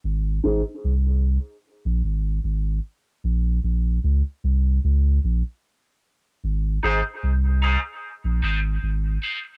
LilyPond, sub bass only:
\new Staff \with { instrumentName = "Sub bass" } { \clef bass \time 4/4 \key aes \mixolydian \tempo 4 = 75 aes,,8 aes,,16 r16 c,8. r8 bes,,16 aes,,8 aes,,8 r8 | bes,,8 bes,,8 des,16 r16 c,8 des,8 bes,,16 r4 r16 | aes,,8 aes,,16 r16 c,8. r8 bes,,16 aes,,8 aes,,8 r8 | }